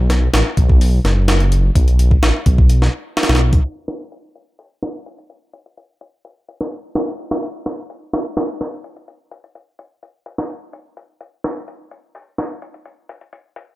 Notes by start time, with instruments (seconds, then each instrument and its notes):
Already playing: detuned saw bass B1
0.10 snare, closed hi-hat
0.33 detuned saw bass A1, snare, closed hi-hat
0.57 detuned saw bass B1, kick, closed hi-hat
0.69 kick
0.81 open hi-hat
1.04 detuned saw bass F#1, snare, closed hi-hat
1.28 snare, closed hi-hat
1.40 closed hi-hat
1.52 closed hi-hat
1.75 detuned saw bass B1, kick, closed hi-hat
1.88 closed hi-hat
1.99 closed hi-hat
2.11 kick
2.23 detuned saw bass A1, snare, closed hi-hat
2.46 detuned saw bass B1, kick, closed hi-hat
2.58 kick
2.69 closed hi-hat
2.82 snare
3.17 snare, closed hi-hat
3.23 snare, closed hi-hat
3.29 detuned saw bass B1, snare, closed hi-hat
3.35 snare, closed hi-hat
3.53 kick, closed hi-hat
3.64 closed hi-hat
3.88 snare, closed hi-hat
4.12 closed hi-hat
4.35 closed hi-hat
4.59 open hi-hat
4.83 snare, closed hi-hat
5.06 closed hi-hat
5.18 closed hi-hat
5.30 closed hi-hat
5.53 closed hi-hat
5.66 closed hi-hat
5.77 closed hi-hat
6.01 closed hi-hat
6.25 closed hi-hat
6.48 closed hi-hat
6.61 snare
6.72 closed hi-hat
6.95 snare, closed hi-hat
7.19 closed hi-hat
7.31 snare, closed hi-hat
7.42 closed hi-hat
7.66 snare, closed hi-hat
7.90 closed hi-hat
8.13 snare, closed hi-hat
8.37 snare, closed hi-hat
8.61 snare, closed hi-hat
8.84 closed hi-hat
8.96 closed hi-hat
9.08 closed hi-hat
9.31 closed hi-hat
9.44 closed hi-hat
9.55 closed hi-hat
9.79 closed hi-hat
10.03 closed hi-hat
10.26 closed hi-hat
10.38 snare
10.50 closed hi-hat
10.73 closed hi-hat
10.97 closed hi-hat
11.21 closed hi-hat
11.44 snare, closed hi-hat
11.68 closed hi-hat
11.91 closed hi-hat
12.15 open hi-hat
12.38 snare, closed hi-hat
12.62 closed hi-hat
12.74 closed hi-hat
12.85 closed hi-hat
13.09 closed hi-hat
13.21 closed hi-hat
13.33 closed hi-hat
13.56 closed hi-hat